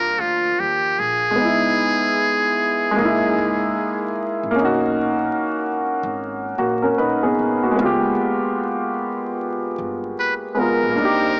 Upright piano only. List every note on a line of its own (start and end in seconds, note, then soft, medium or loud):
0.00 1.30 F3 medium
0.00 1.33 A#3 medium
0.00 1.35 D4 medium
0.00 1.37 F4 medium
1.31 2.90 G#3 medium
1.36 2.93 B3 medium
1.40 2.96 D#4 medium
1.45 2.98 E4 medium
2.91 4.51 G#3 medium
2.96 4.50 A#3 medium
3.00 4.56 D#4 medium
3.05 4.58 E4 medium
4.51 6.50 A#3 medium
4.56 6.53 C#4 medium
4.60 6.55 D#4 medium
4.65 6.57 F#4 medium
6.58 6.82 A#3 medium
6.58 6.81 F#4 medium
6.82 6.97 C#4 medium
6.82 6.97 A#4 medium
6.98 7.21 D#4 medium
6.98 7.21 B4 medium
7.23 7.61 B3 medium
7.23 7.60 G#4 medium
7.63 8.01 A#3 soft
7.63 8.00 F#4 medium
7.71 10.50 G#3 medium
7.76 10.53 B3 medium
7.81 10.55 F4 medium
7.85 10.57 G4 medium
10.55 10.96 G#3 soft
10.55 10.97 B3 soft
10.59 10.98 F4 soft
10.59 10.99 A#4 medium
10.91 11.40 A#3 medium
10.96 11.40 D4 medium
11.00 11.40 D#4 medium
11.05 11.40 G4 medium